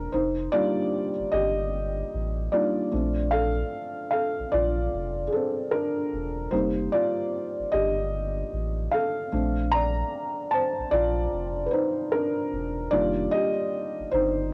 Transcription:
0.00 0.13 C4 medium
0.00 0.14 D4 medium
0.00 0.13 A4 medium
0.00 0.14 A#4 medium
0.12 0.48 F1 medium
0.12 0.50 D#4 medium
0.12 0.53 C5 medium
0.52 1.10 G3 medium
0.52 1.10 A#3 medium
0.52 1.11 D4 medium
0.52 1.11 D#4 medium
0.52 1.29 F4 medium
0.52 1.34 D5 loud
1.19 1.25 G1 soft
1.32 2.03 G1 medium
1.32 2.49 G4 medium
1.32 2.55 D#5 loud
2.14 2.48 A1 medium
2.52 2.88 G3 medium
2.52 2.88 A#3 soft
2.52 2.88 D4 soft
2.52 2.89 D#4 medium
2.52 3.29 F4 medium
2.52 3.28 D5 medium
2.92 3.63 A#1 loud
2.92 3.49 A3 medium
2.92 3.50 C4 medium
2.92 3.50 D4 medium
3.31 4.08 A4 medium
3.31 4.07 F5 loud
4.11 4.50 A4 medium
4.11 4.48 F5 medium
4.39 4.44 A#1 soft
4.52 4.88 A#1 loud
4.52 5.24 F4 medium
4.52 5.23 D5 loud
4.93 5.28 F1 loud
5.27 5.32 G#4 medium
5.32 5.70 C4 medium
5.32 5.73 A4 medium
5.71 6.49 D4 medium
5.71 6.54 A#4 medium
6.13 6.48 E1 medium
6.51 6.88 F1 loud
6.51 9.28 G3 medium
6.51 9.28 A#3 medium
6.51 9.28 C4 medium
6.51 6.90 D#4 medium
6.51 6.88 C5 loud
6.92 7.69 F4 medium
6.92 7.68 D5 loud
7.59 7.64 G1 soft
7.72 8.43 G1 medium
7.72 8.88 G4 medium
7.72 8.95 D#5 loud
8.53 8.88 A1 medium
8.92 9.69 A4 medium
8.92 9.68 F5 medium
9.32 10.03 A#1 loud
9.32 9.90 A3 medium
9.32 9.90 C4 soft
9.32 9.90 D4 medium
9.72 10.49 D5 medium
9.72 10.54 A#5 loud
10.51 10.90 C5 medium
10.51 10.92 A5 loud
10.79 10.84 A#1 medium
10.91 11.27 A#1 loud
10.91 11.63 F4 medium
10.91 11.69 D5 loud
11.33 11.67 F1 loud
11.66 11.71 B4 medium
11.71 12.10 D#4 medium
11.71 12.12 C5 medium
12.12 12.89 D4 medium
12.12 12.94 A#4 medium
12.53 12.88 E1 medium
12.91 13.28 F1 loud
12.91 13.50 D#3 medium
12.91 13.50 G3 medium
12.91 13.50 A#3 medium
12.91 13.50 D4 medium
12.91 13.30 F4 medium
12.91 13.32 D5 loud
13.31 14.09 G4 medium
13.31 14.08 D#5 loud
14.00 14.05 G1 soft
14.11 14.53 G1 medium
14.11 14.50 D#4 medium
14.11 14.53 C5 loud

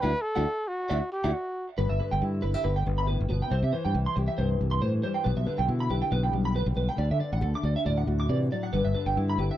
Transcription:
0.00 0.12 D2 medium
0.00 0.11 D4 medium
0.00 0.11 E4 medium
0.00 0.11 F#4 medium
0.00 0.23 B4 loud
0.00 0.11 D5 medium
0.00 0.11 E5 medium
0.00 0.11 F#5 medium
0.21 0.69 A4 loud
0.35 0.45 D2 medium
0.35 0.43 D4 medium
0.35 0.43 E4 medium
0.35 0.43 F#4 medium
0.35 0.43 D5 medium
0.35 0.43 E5 medium
0.35 0.43 F#5 medium
0.67 1.11 F#4 medium
0.89 1.00 D2 medium
0.89 0.99 D4 medium
0.89 0.99 E4 medium
0.89 0.99 F#4 medium
0.89 0.98 D5 medium
0.89 0.98 E5 medium
0.89 0.98 F#5 medium
1.12 1.35 G4 medium
1.24 1.32 D2 medium
1.24 1.31 D4 medium
1.24 1.31 E4 medium
1.24 1.30 F#4 medium
1.24 1.31 D5 medium
1.24 1.30 E5 medium
1.24 1.31 F#5 loud
1.33 1.67 F#4 medium
1.78 1.89 G1 loud
1.78 3.49 G2 medium
1.78 1.88 B4 medium
1.89 1.99 G1 medium
1.89 1.98 E5 medium
2.00 2.63 D3 medium
2.00 2.10 B4 medium
2.11 2.21 G1 loud
2.11 2.20 G5 medium
2.22 2.41 G2 medium
2.22 2.43 E4 medium
2.42 2.54 G1 medium
2.42 2.54 E4 medium
2.42 2.53 B4 medium
2.54 3.51 G4 medium
2.54 2.63 E5 medium
2.64 2.84 G1 medium
2.64 3.08 D3 medium
2.64 2.75 B4 medium
2.76 2.85 G5 medium
2.86 3.17 G1 medium
2.86 3.49 B3 medium
2.98 3.07 B5 medium
3.07 3.29 A2 medium
3.07 3.18 B4 medium
3.21 3.29 G1 medium
3.29 3.41 G1 medium
3.29 3.49 B2 medium
3.29 3.40 B4 medium
3.42 3.51 G5 medium
3.50 3.62 C2 loud
3.50 3.73 C3 medium
3.50 3.62 C5 loud
3.62 3.72 C3 medium
3.62 3.72 E5 medium
3.73 4.83 E3 medium
3.73 3.83 C5 medium
3.85 3.94 G2 medium
3.85 3.94 G5 medium
3.94 4.05 C2 loud
3.94 5.49 E4 medium
4.06 4.15 C6 medium
4.16 4.27 C2 loud
4.16 5.24 G4 medium
4.16 muted clean electric guitar stroke medium
4.28 4.37 E5 medium
4.38 4.58 C2 loud
4.38 5.24 G2 medium
4.38 4.49 C5 medium
4.61 4.80 C2 medium
4.61 5.03 G3 medium
4.71 4.80 C6 medium
4.82 5.01 A2 loud
4.82 5.46 E3 medium
4.82 4.92 C5 medium
5.03 6.32 G3 medium
5.03 5.14 C5 medium
5.14 5.24 G5 medium
5.24 5.36 B1 loud
5.24 5.46 B2 medium
5.24 5.35 B4 medium
5.36 5.46 B1 medium
5.36 5.46 E5 medium
5.46 6.52 D3 medium
5.46 5.57 B4 medium
5.58 5.68 B1 loud
5.58 5.67 G5 medium
5.68 5.88 B2 loud
5.68 6.99 E4 medium
5.80 5.89 B5 medium
5.90 6.01 B1 medium
5.90 6.97 G4 medium
5.90 6.01 B4 medium
6.02 6.11 G5 medium
6.10 6.31 B1 loud
6.10 6.55 B2 medium
6.10 6.23 B4 loud
6.23 6.32 G5 medium
6.33 6.64 B1 medium
6.33 6.73 G3 medium
6.45 6.54 B5 medium
6.54 6.95 D3 medium
6.54 6.66 B4 medium
6.66 6.76 B1 medium
6.74 6.88 B1 medium
6.74 6.98 G3 medium
6.74 6.87 B4 medium
6.89 6.98 G5 medium
6.96 7.09 D2 loud
6.96 8.28 D3 medium
6.96 7.09 D5 medium
7.11 7.20 D3 medium
7.11 7.20 E5 medium
7.19 8.70 D4 medium
7.19 7.31 D5 medium
7.33 7.41 A1 loud
7.33 7.41 F#5 medium
7.41 7.53 D2 loud
7.41 7.64 A4 medium
7.55 7.64 D6 medium
7.63 7.74 D2 medium
7.63 8.71 A4 medium
7.63 7.75 D5 medium
7.76 7.85 E5 medium
7.86 8.05 D2 loud
7.86 8.71 A2 medium
7.86 7.97 D5 medium
7.97 8.06 F#5 medium
8.07 8.27 D2 medium
8.07 8.71 F#4 medium
8.20 8.28 D6 medium
8.29 8.49 C3 medium
8.29 8.51 E3 medium
8.29 8.40 D5 medium
8.52 8.73 F#3 medium
8.52 8.62 D5 medium
8.63 8.72 F#5 medium
8.73 8.84 G1 loud
8.73 9.57 G2 medium
8.73 8.83 B4 medium
8.85 8.94 G1 medium
8.85 8.93 E5 medium
8.94 9.57 D3 medium
8.94 9.05 B4 medium
9.06 9.15 G1 medium
9.06 9.15 G5 medium
9.17 9.36 G2 medium
9.17 9.57 E4 medium
9.29 9.38 B5 medium
9.38 9.49 G1 medium
9.38 9.57 G4 medium
9.38 9.49 B4 medium
9.51 9.57 E5 medium

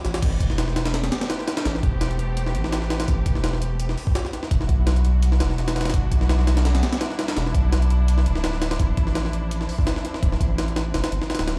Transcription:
0.00 0.19 F3 medium
0.00 0.19 C4 medium
0.00 0.18 D4 medium
0.00 0.19 E4 medium
0.00 0.23 D6 medium
0.05 0.21 A1 medium
0.05 snare medium
0.05 closed hi-hat medium
0.14 snare loud
0.14 closed hi-hat medium
0.22 0.39 A1 loud
0.22 4.47 A3 medium
0.22 4.47 B3 medium
0.22 4.47 C4 medium
0.22 4.47 G4 medium
0.22 kick loud
0.22 closed hi-hat medium
0.22 crash loud
0.40 1.10 E1 medium
0.40 kick loud
0.40 closed hi-hat medium
0.50 snare soft
0.58 snare loud
0.58 closed hi-hat medium
0.68 snare medium
0.76 snare loud
0.76 closed hi-hat medium
0.85 snare loud
0.85 closed hi-hat medium
0.94 snare loud
0.94 closed hi-hat medium
1.04 snare loud
1.04 closed hi-hat medium
1.12 snare loud
1.12 closed hi-hat medium
1.21 snare loud
1.21 closed hi-hat medium
1.30 snare loud
1.30 closed hi-hat medium
1.39 snare medium
1.48 snare loud
1.48 closed hi-hat medium
1.57 snare loud
1.57 closed hi-hat medium
1.65 1.82 A1 loud
1.65 snare loud
1.65 closed hi-hat medium
1.75 snare medium
1.83 2.56 E1 medium
1.83 kick loud
1.83 closed hi-hat medium
2.01 snare loud
2.01 closed hi-hat medium
2.11 closed hi-hat soft
2.19 closed hi-hat medium
2.37 closed hi-hat medium
2.46 snare medium
2.55 3.07 A1 medium
2.55 closed hi-hat medium
2.64 snare medium
2.72 snare loud
2.72 closed hi-hat medium
2.82 snare medium
2.90 snare loud
2.90 closed hi-hat medium
3.00 snare loud
3.00 closed hi-hat medium
3.08 3.24 A1 loud
3.08 kick loud
3.08 closed hi-hat medium
3.26 3.96 E1 medium
3.26 kick medium
3.26 closed hi-hat medium
3.35 snare soft
3.44 snare loud
3.44 closed hi-hat medium
3.53 snare medium
3.62 closed hi-hat medium
3.80 closed hi-hat medium
3.89 snare medium
3.98 open hi-hat medium
4.07 kick loud
4.15 snare loud
4.15 closed hi-hat medium
4.25 snare medium
4.33 snare soft
4.33 closed hi-hat medium
4.43 snare medium
4.51 4.67 E1 loud
4.51 8.05 G3 medium
4.51 11.59 D4 medium
4.51 11.59 E4 medium
4.51 8.05 F#4 medium
4.51 kick loud
4.51 closed hi-hat medium
4.61 snare medium
4.69 5.42 B1 medium
4.69 kick loud
4.69 closed hi-hat medium
4.87 snare loud
4.87 closed hi-hat medium
4.96 closed hi-hat soft
5.05 closed hi-hat medium
5.22 closed hi-hat medium
5.32 snare medium
5.40 5.93 E1 medium
5.40 snare loud
5.40 closed hi-hat medium
5.50 snare medium
5.58 snare soft
5.58 closed hi-hat medium
5.68 snare loud
5.68 closed hi-hat medium
5.76 snare medium
5.76 closed hi-hat medium
5.81 snare medium
5.81 closed hi-hat medium
5.85 snare loud
5.85 closed hi-hat medium
5.90 snare medium
5.90 closed hi-hat medium
5.94 6.10 E1 loud
5.94 kick loud
5.94 closed hi-hat medium
6.12 6.82 B1 medium
6.12 kick medium
6.12 closed hi-hat medium
6.21 snare medium
6.29 snare loud
6.29 closed hi-hat medium
6.39 snare medium
6.47 snare loud
6.47 closed hi-hat medium
6.57 snare loud
6.57 closed hi-hat medium
6.65 snare loud
6.65 closed hi-hat medium
6.75 snare loud
6.75 closed hi-hat medium
6.83 snare loud
6.83 closed hi-hat medium
6.93 snare loud
6.93 closed hi-hat medium
7.01 snare loud
7.01 closed hi-hat medium
7.10 snare medium
7.19 snare loud
7.19 closed hi-hat medium
7.28 snare loud
7.28 closed hi-hat medium
7.37 7.53 E1 loud
7.37 snare loud
7.37 closed hi-hat medium
7.46 snare medium
7.55 8.27 B1 medium
7.55 kick loud
7.55 closed hi-hat medium
7.72 snare loud
7.72 closed hi-hat medium
7.82 closed hi-hat soft
7.90 closed hi-hat medium
8.08 11.59 F3 medium
8.08 11.59 C4 medium
8.08 closed hi-hat medium
8.18 snare medium
8.26 8.78 D1 medium
8.26 closed hi-hat medium
8.35 snare medium
8.44 snare loud
8.44 closed hi-hat medium
8.53 snare medium
8.62 snare loud
8.62 closed hi-hat medium
8.71 snare loud
8.71 closed hi-hat medium
8.79 8.96 D1 medium
8.79 kick loud
8.79 closed hi-hat medium
8.97 9.68 A1 medium
8.97 kick loud
8.97 closed hi-hat medium
9.07 snare soft
9.15 snare loud
9.15 closed hi-hat medium
9.25 snare medium
9.33 closed hi-hat medium
9.51 closed hi-hat medium
9.61 snare medium
9.69 open hi-hat medium
9.79 kick loud
9.87 snare loud
9.87 closed hi-hat medium
9.96 snare medium
10.05 snare soft
10.05 closed hi-hat medium
10.14 snare medium
10.23 10.39 D1 medium
10.23 kick loud
10.23 closed hi-hat medium
10.32 snare medium
10.41 10.93 A1 medium
10.41 kick medium
10.41 closed hi-hat medium
10.58 snare loud
10.58 closed hi-hat medium
10.68 closed hi-hat soft
10.76 snare loud
10.76 closed hi-hat medium
10.94 11.03 F1 medium
10.94 snare loud
10.94 closed hi-hat medium
11.04 snare loud
11.04 closed hi-hat medium
11.12 11.20 G1 medium
11.12 closed hi-hat medium
11.22 snare medium
11.30 snare medium
11.30 closed hi-hat medium
11.35 snare medium
11.35 closed hi-hat medium
11.39 11.59 D1 medium
11.39 snare loud
11.39 closed hi-hat medium
11.48 snare loud
11.48 closed hi-hat medium

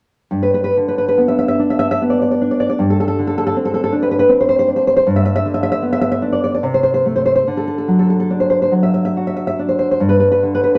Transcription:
0.31 2.75 G2 soft
0.43 0.53 B4 medium
0.54 0.63 B4 medium
0.64 0.76 B4 medium
0.77 2.01 D3 soft
0.88 0.97 B4 medium
0.98 1.07 B4 medium
1.08 1.20 B4 medium
1.18 2.00 B3 soft
1.28 1.37 E5 medium
1.39 1.47 E5 medium
1.48 1.60 E5 medium
1.59 2.40 D4 soft
1.70 1.78 E5 medium
1.79 1.90 E5 medium
1.91 2.01 E5 medium
2.02 2.81 B3 soft
2.10 2.20 D5 medium
2.22 2.30 D5 medium
2.31 2.41 D5 medium
2.41 2.81 D4 soft
2.51 2.59 D5 medium
2.60 2.68 D5 medium
2.70 2.80 D5 medium
2.79 5.03 G2 medium
2.90 2.99 A4 medium
3.00 3.07 A4 medium
3.08 3.18 A4 medium
3.19 4.31 D3 soft
3.27 3.37 A4 medium
3.38 3.45 A4 medium
3.47 3.56 A4 medium
3.56 4.28 C4 soft
3.65 3.73 A4 medium
3.74 3.83 A4 medium
3.84 3.93 A4 medium
3.92 4.67 D4 soft
4.02 4.10 B4 medium
4.11 4.18 B4 medium
4.19 4.30 B4 medium
4.29 5.06 C4 medium
4.41 4.48 C5 medium
4.49 4.58 C5 medium
4.59 4.69 C5 medium
4.68 5.07 D4 soft
4.76 4.86 C5 medium
4.87 4.95 C5 medium
4.97 5.07 C5 medium
5.07 6.60 G2 medium
5.16 5.24 E5 medium
5.25 5.34 E5 medium
5.36 5.46 E5 medium
5.45 6.64 D3 soft
5.54 5.62 E5 medium
5.63 5.71 E5 medium
5.72 5.83 E5 medium
5.82 6.63 B3 soft
5.93 6.00 E5 medium
6.01 6.10 E5 medium
6.12 6.23 E5 medium
6.22 6.63 D4 soft
6.33 6.43 D5 medium
6.44 6.53 D5 medium
6.54 6.64 D5 medium
6.63 7.43 C3 medium
6.74 6.82 C5 medium
6.83 6.93 C5 medium
6.94 7.04 C5 medium
7.06 7.43 A3 soft
7.16 7.24 C5 medium
7.26 7.34 C5 medium
7.36 7.46 C5 medium
7.47 9.96 D3 medium
7.57 7.66 A4 medium
7.68 7.77 A4 medium
7.78 7.88 A4 medium
7.88 8.70 F#3 soft
7.99 8.09 A4 medium
8.10 8.19 A4 medium
8.20 8.30 A4 medium
8.30 9.58 D4 soft
8.40 8.49 C5 soft
8.50 8.61 C5 medium
8.62 8.72 C5 medium
8.71 9.99 F#3 soft
8.83 8.93 E5 medium
8.94 9.04 E5 medium
9.05 9.15 E5 medium
9.17 10.01 F#4 soft
9.27 9.35 E5 medium
9.36 9.46 E5 medium
9.47 9.58 E5 medium
9.59 10.00 D4 soft
9.69 9.78 C5 soft
9.79 9.89 C5 medium
9.91 10.01 C5 medium
10.00 10.78 G2 medium
10.09 10.19 B4 medium
10.20 10.30 B4 medium
10.32 10.42 B4 medium
10.43 10.78 D3 soft
10.55 10.62 B4 medium
10.64 10.74 B4 medium
10.75 10.78 B4 medium

